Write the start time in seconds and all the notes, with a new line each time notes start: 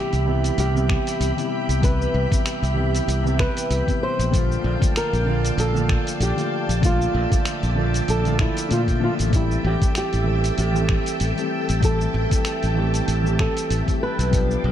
Already playing: C3 E3 G3 B3 E4 G4 E5 G5 B5 G6
0.13 C2, open hi-hat, shaker
0.25 C3 E3 G3 B3
0.29 E4
0.44 open hi-hat, shaker
0.58 C2 G4, open hi-hat, shaker
0.74 C3 E3 G3 B3, shaker
0.78 E4
0.89 finger snap, kick
1.07 open hi-hat, shaker
1.20 C2, open hi-hat, shaker
1.36 C3 E3 G3 B3 E4, open hi-hat, shaker
1.69 C2, open hi-hat, shaker
1.80 C3 E3 G3 B3 E4 B4, kick, open hi-hat, shaker
2.02 shaker
2.14 C2
2.30 C3 E3 G3 B3 E4, kick, open hi-hat, shaker
2.46 finger snap, open hi-hat, shaker
2.62 C2, open hi-hat, shaker
2.74 C3 E3 G3 B3 E4
2.95 open hi-hat, shaker
3.08 C2, open hi-hat, shaker
3.23 C3 E3 G3 B3 E4, shaker
3.39 B4, finger snap, kick
3.57 open hi-hat, shaker
3.70 C2, open hi-hat, shaker
3.86 C3 E3 G3 B3 E4, kick, open hi-hat, shaker
4.03 C5
4.19 A#1, open hi-hat, shaker
4.31 D3 F3 A3 A#3 F4 D5 F5 A5, kick, open hi-hat, shaker
4.52 shaker
4.64 A#1
4.79 D3 F3 A3 A#3, kick, open hi-hat, shaker
4.83 F4
4.96 A#4, finger snap, open hi-hat, shaker
5.13 A#1, open hi-hat, shaker
5.25 D3 F3 A#3
5.29 F4
5.45 open hi-hat, shaker
5.58 A#1 A4, open hi-hat, shaker
5.73 D3 F3 A3 A#3 F4, shaker
5.89 finger snap, kick
6.07 open hi-hat, shaker
6.20 A#1 G4, open hi-hat, shaker
6.36 D3 F3 A3 A#3 F4, open hi-hat, shaker
6.69 A#1, open hi-hat, shaker
6.81 D3 F3 A3 A#3 F4 E5, kick, open hi-hat, shaker
6.85 F4
7.02 shaker
7.14 A#1
7.30 D3 F3 A3 A#3 F4, kick, open hi-hat, shaker
7.45 finger snap, open hi-hat, shaker
7.63 A#1, open hi-hat, shaker
7.75 D3 F3 A3 A#3 F4
7.94 open hi-hat, shaker
8.08 A#1 A4, open hi-hat, shaker
8.24 D3 F3 A3 A#3 F4, open hi-hat, shaker
8.39 E4, finger snap, kick
8.57 open hi-hat, shaker
8.69 A#2 D3 F3 A3 A#3 F4, open hi-hat, shaker
8.88 kick, open hi-hat, shaker
8.99 D3 F3 A3 A#3 F4
9.04 F4
9.19 A1, open hi-hat, shaker
9.31 E3 G3 A3 C4 A4 G5 A5, kick, open hi-hat, shaker
9.35 E4 G4
9.51 shaker
9.64 A1 G4
9.79 E3 G3 A3 C4 G4, kick, open hi-hat, shaker
9.95 G4, finger snap, open hi-hat, shaker
10.13 A1, open hi-hat, shaker
10.24 E3 G3 A3 C4 G4
10.44 open hi-hat, shaker
10.58 A1 G4, open hi-hat, shaker
10.72 E3 G3 A3 C4, shaker
10.77 G4
10.89 finger snap, kick
11.06 open hi-hat, shaker
11.20 A1, open hi-hat, shaker
11.35 E3 G3 A3 C4, open hi-hat, shaker
11.39 G4
11.69 A1, open hi-hat, shaker
11.81 E3 G3 A3 C4 A4, kick, open hi-hat, shaker
11.85 G4
12.01 shaker
12.14 A1
12.30 E3 G3 A3 C4 G4, kick, open hi-hat, shaker
12.45 finger snap, open hi-hat, shaker
12.63 A1, open hi-hat, shaker
12.75 E3 G3 A3 C4 G4
12.94 open hi-hat, shaker
13.08 A1, open hi-hat, shaker
13.23 E3 G3 A3 C4 G4, shaker
13.39 A4, finger snap, kick
13.57 open hi-hat, shaker
13.70 A1, open hi-hat, shaker
13.86 E3 G3 A3 C4 G4, kick, open hi-hat, shaker
14.03 B4
14.19 B1, open hi-hat, shaker
14.31 F3 G3 B3 D4 G4 B4 F5 G5 D6, kick, open hi-hat, shaker
14.51 shaker
14.64 B1